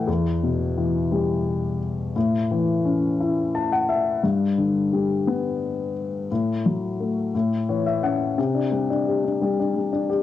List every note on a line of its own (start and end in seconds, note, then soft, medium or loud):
0.00 0.10 A3 soft
0.00 0.10 G5 soft
0.07 2.11 E2 medium
0.43 1.77 B2 soft
0.77 2.12 E3 soft
1.12 2.12 G3 soft
2.16 4.19 A2 medium
2.51 3.85 E3 soft
2.85 4.19 C#4 soft
3.20 4.21 E4 soft
3.55 3.70 A5 medium
3.72 3.88 F#5 medium
3.89 4.21 E5 medium
4.24 6.27 G2 medium
4.58 5.92 D3 soft
4.93 6.27 G3 soft
5.27 6.28 B3 soft
6.32 7.32 A2 medium
6.66 7.33 F#3 soft
7.00 7.34 A3 soft
7.35 8.35 A2 medium
7.69 8.36 E3 soft
7.69 7.85 C#5 soft
7.86 8.02 E5 medium
8.03 8.37 C#4 soft
8.03 8.35 F#5 medium
8.38 10.23 C3 medium
8.55 8.88 D4 soft
8.71 9.40 G3 soft
8.90 9.23 D4 soft
9.07 10.08 G4 soft
9.25 9.58 D4 soft
9.42 9.75 G3 medium
9.59 9.91 D4 soft
9.76 10.23 G3 soft
9.93 10.23 D4 soft
10.09 10.23 G4 soft